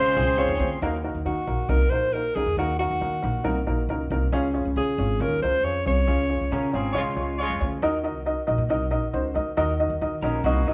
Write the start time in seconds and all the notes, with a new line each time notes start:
Already playing: C#3 G#3 F4 G#4 C5 C6
0.16 C#2 C4 C#4 F4 G#4 C5
0.37 C4 C#4 F4 G#4 C5 C#5
0.49 D#2
0.59 D2 C4 C#4 F4 G#4 C5
0.82 D#2 D#3 A#3 D#4 F#4 A#4
1.04 A#3 D#4 F#4 A#4
1.15 D#2
1.25 D#3 A#3 D#4 F#4 A#4
1.47 A#1 A#3 D#4 F#4 A#4
1.69 C2 A#3 D#4 F#4 A#4
1.90 A#1 A#3 D#4 F#4 A#4 C5
2.13 A#3 D#4 F#4 A#4
2.35 C#2 A#3 D#4 F#4 G#4 A#4
2.46 D#2
2.57 D#2 D#3 A#3 D#4 F#4 A#4
2.79 A#3 D#4 F#4 A#4
2.90 D#2
3.01 D#3 A#3 D#4 F#4 A#4
3.22 A#1 A#3 D#4 F#4 A#4
3.44 C2 A#3 D#4 F#4 A#4
3.67 A#1 A#3 D#4 F#4 A#4
3.89 C#2 A#3 D#4 F#4 A#4
4.10 C2 A#3 D#4 F#4 A#4
4.32 C#2 C#3 C#4 F4 G#4 C#5
4.54 C#4 F4 G#4 C#5
4.65 C#2
4.76 C#3 C#4 F4 G#4 C#5
4.98 G#1 C#4 F4 G#4 C#5
5.20 D#2 C#4 F4 G#4 A#4 C#5
5.42 C#2 C#4 F4 G#4 A#4 C5
5.64 F2 C#4 F4 G#4 C#5
5.86 C2 C#4 F4 G#4 C#5
6.07 C#2 C#3 C#4 F4 G#4 C#5
6.29 C#4 F4 G#4 C#5
6.41 C#2
6.52 C#3 C#4 F4 G#4 A#4 C#5
6.72 G#1 C4 C#4 F4 G#4 C#5
6.92 C#3 G#3 C#4 F4 G#4 C#5
7.16 C#2 G#3 C#4 F4 G#4 C#5
7.38 G#3 C#4 F4 G#4 C#5
7.50 F2
7.60 D2 C#4 F4 G#4 C#5
7.82 D#2 D#3 D#4 F#4 A#4 D#5
8.03 D#4 F#4 A#4 D#5
8.15 C2
8.26 D#4 F#4 A#4 D#5
8.47 A#1 D#4 F#4 A#4 D#5
8.58 A#2
8.69 C2 D#4 F#4 A#4 D#5
8.91 A#1 D#4 F#4 A#4 D#5
9.13 C#2 D#4 F#4 A#4 C5
9.34 D2 D#4 F#4 A#4 D#5
9.57 D#2 D#3 D#4 F#4 A#4 D#5
9.79 D#4 F#4 A#4 D#5
9.90 D#2
10.01 D#3 D#4 F#4 A#4 D#5
10.22 A#1 C#4 D#4 F#4 A#4 D#5
10.44 C2 A#3 D#4 F#4 A#4 D#5
10.67 F#3 D#4 F#4 A#4 D#5